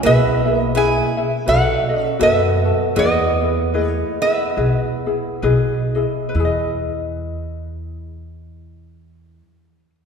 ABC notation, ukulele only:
X:1
M:4/4
L:1/8
Q:"Swing" 1/4=72
K:E
V:1 name="Ukulele"
[EGBe] [EGe] [EGBe] [EGe] [FABd] [FAd] [FAB] [FA] | [EGBd] [EGd] [EGBd] [EG] [EGB] [EG] [EGBd] [EGd] | [EGBd]8 |]